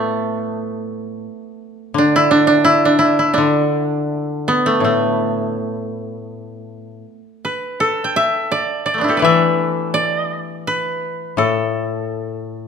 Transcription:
Already playing: A2 A3 B3
1.94 D3
1.98 D4
2.16 E4
2.31 D4
2.47 D4
2.65 E4
2.85 D4
2.99 E4
3.19 E4
3.34 D4 E4
3.38 D3
4.48 B3
4.66 A3
4.80 A2
4.84 A3
7.45 B4
7.80 A4
8.04 G5
8.16 E5
8.52 D5
8.86 D5
8.94 A3
8.98 B3 D4
9.04 E4
9.09 G4 A4
9.17 B4 D5
9.22 E3 E5
9.94 D5
10.67 B4
11.37 A2 A4

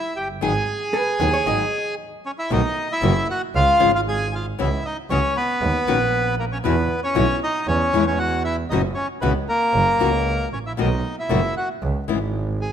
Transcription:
Already playing: E4 E5
0.16 F#1 G4 G5
0.41 G#1 D#3 F#3 B3 D#4 G#4 G#5
0.94 B4
1.20 D#2 D#3 F#3 B3 D#4 G#4
1.34 C#5
1.46 G#1 D#3 F#3 B3 D#4 G#4 D#5
2.26 C#4 C#5
2.38 E4 E5
2.50 B1 B2 D#3 A#3 B3 D#4 F#4 D#5
2.92 E4 E5
3.02 F#1 B2 D#3 A#3 B3 F#4
3.30 F#4 F#5
3.55 C#2 F4 F5
3.80 G#1 C#3 F3 G#3 B3 F4
3.95 F4 F5
4.08 G#4 G#5
4.34 F4 F5
4.59 C#2 C#3 E3 B3 C#4 E4 F#4 E5
4.86 D#4 D#5
5.10 C#2 C#3 E3 B3 C#4 F#4 C#5
5.37 B3 B4
5.61 D#2
5.87 A#1 D#3 A#3 C#4 F#4
6.39 A#3 A#4
6.52 C#4 C#5
6.64 E2 B2 E3 B3 E4 F#4 B4
7.04 C#4 C#5
7.15 B1 B2 E3 B3 E4 F#4
7.43 D#4 D#5
7.67 E2 C#4 C#5
7.93 E2 E3 G#3 C#4 E4
8.07 C#4 C#5
8.19 F#4 F#5
8.45 E4 E5
8.70 F#1 B2 E3 B3 C#4 D#4 F#4 D#5
8.94 C#4 C#5
9.21 C#2 B2 E3 B3 C#4 F#4 B4
9.49 A#3 A#4
9.74 F#1
9.99 C#2 C#3 E3 A#3 C#4 F#4
10.53 A1 C#4 C#5
10.66 E4 E5
10.77 B1 B2 D#3 A#3 B3 D#4 F#4 D#5
11.19 E4 E5
11.29 F#1 B2 D#3 A#3 B3 F#4
11.57 F#4 F#5
11.82 C#2
12.08 G#1 C#3 E3 G#3 B3 E4
12.61 G#4 G#5

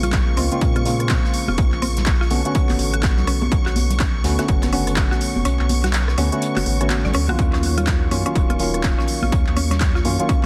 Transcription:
Already playing: A#1 C#3 G#3 A#3 C4 F4 C#6
0.03 F4, closed hi-hat, low conga
0.12 kick, snare, clap, closed hi-hat
0.36 C#2 C#3 G#3 A#3 C4 F4, closed hi-hat, open hi-hat, high conga
0.51 C#3 G#3 A#3 C4 F4, closed hi-hat
0.61 A#2, kick, closed hi-hat
0.76 F4, cross-stick, closed hi-hat, high conga
0.85 C#3 G#3 A#3 C4 F4, closed hi-hat, open hi-hat
1.00 cross-stick, closed hi-hat
1.09 C4, kick, snare, clap, closed hi-hat, high conga
1.24 snare
1.33 closed hi-hat, open hi-hat
1.48 F1 F4, high conga
1.58 A#1, kick, closed hi-hat
1.72 A#1, clap
1.82 C4, closed hi-hat, open hi-hat, high conga
1.97 snare, closed hi-hat, low conga
2.06 kick, snare, clap, closed hi-hat
2.21 F4, snare
2.30 B1 D3 A3 B3 C#4 F#4, closed hi-hat, open hi-hat, high conga
2.44 D3 A3 B3 C#4 F#4, closed hi-hat
2.55 C#4, kick, closed hi-hat
2.69 F#1, clap, open hi-hat, high conga
2.79 A1, closed hi-hat, open hi-hat, high bongo
2.94 F#4, closed hi-hat
3.03 kick, snare, clap, closed hi-hat, high conga
3.17 D2, snare, low conga
3.27 B1 C#4, cross-stick, closed hi-hat, open hi-hat
3.42 high bongo, high conga
3.51 B1, kick, closed hi-hat
3.66 B1 F#4, snare, clap
3.76 closed hi-hat, open hi-hat, high conga
3.90 closed hi-hat, low conga
3.99 C#4, kick, snare, clap, closed hi-hat
4.24 D2 D3 A3 B3 C#4 F#4, snare, closed hi-hat, open hi-hat, high conga
4.38 D3 A3 B3 C#4 F#4, snare, closed hi-hat
4.48 F#1, kick, closed hi-hat
4.62 cross-stick, snare, closed hi-hat, high conga
4.72 D3 A3 B3 C#4 F#4, snare, open hi-hat
4.87 cross-stick, closed hi-hat
4.96 kick, snare, clap, closed hi-hat, high conga
5.11 F#4, snare
5.21 closed hi-hat, open hi-hat
5.36 F#1, high conga
5.45 B1 C#4, closed hi-hat
5.59 B1, clap
5.69 closed hi-hat, open hi-hat, high conga
5.84 F#4, snare, closed hi-hat, low conga
5.93 snare, clap, closed hi-hat
6.08 cross-stick, snare
6.17 D2 D3 A3 B3 C#4 F#4, closed hi-hat, open hi-hat, high conga
6.32 D3 A3 B3 C#4 F#4, closed hi-hat
6.42 closed hi-hat
6.56 F#1 F#4, clap, open hi-hat, high conga
6.66 A1, open hi-hat, high bongo
6.80 D3 A3 B3 C#4 F#4, cross-stick, closed hi-hat
6.90 F#4, snare, clap, closed hi-hat, high conga
7.04 A1 D5, snare, low conga
7.13 D2 C#4, cross-stick, closed hi-hat, open hi-hat
7.28 B1 D#3 F#3 A#3 C#4 F4 F#4, high bongo, high conga
7.39 D#2 C#4 C#6, kick, closed hi-hat
7.53 D#2 C#4, snare, clap
7.62 closed hi-hat, open hi-hat, high conga
7.77 F4, closed hi-hat, low conga
7.87 kick, snare, clap, closed hi-hat
8.11 F#2 D#3 F#3 A#3 C#4 F4, closed hi-hat, open hi-hat, high conga
8.26 D#3 F#3 A#3 C#4 F4, closed hi-hat
8.35 D#1, kick, closed hi-hat
8.50 F4, cross-stick, closed hi-hat, high conga
8.59 D#3 F#3 A#3 C#4 F4, closed hi-hat, open hi-hat
8.74 cross-stick, closed hi-hat
8.83 C#4, kick, snare, clap, closed hi-hat, high conga
8.98 C#4, snare
9.07 closed hi-hat, open hi-hat
9.22 A#1 F4, high conga
9.32 D#2, kick, closed hi-hat
9.47 D#2, clap
9.56 C#4, closed hi-hat, open hi-hat, high conga
9.70 C#4, snare, closed hi-hat, low conga
9.80 kick, snare, clap, closed hi-hat
9.95 F4, snare
10.04 F#2 D#3 F#3 A#3 C#4 F4, closed hi-hat, open hi-hat, high conga
10.19 D#3 F#3 A#3 C#4 F4, closed hi-hat
10.29 C#4, kick, closed hi-hat

